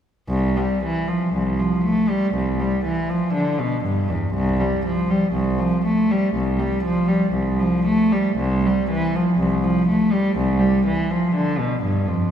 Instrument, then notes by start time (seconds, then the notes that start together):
cello
0.29 C2
0.57 G3
0.84 E3
1.08 F3
1.34 C2
1.59 F3
1.84 A3
2.09 G3
2.35 C2
2.60 G3
2.84 E3
3.10 F3
3.33 D3
3.60 B2
3.85 G2
4.10 E2
4.35 C2
4.60 G3
4.85 F3
5.10 G3
5.33 C2
5.59 F3
5.85 A3
6.11 G3
6.35 C2
6.59 G3
6.83 F3
7.08 G3
7.33 C2
7.59 F3
7.86 A3
8.12 G3
8.37 C2
8.66 G3
8.90 E3
9.16 F3
9.39 C2
9.64 F3
9.88 A3
10.12 G3
10.37 C2
10.60 G3
10.86 E3
11.10 F3
11.35 D3
11.59 B2
11.83 G2
12.08 F2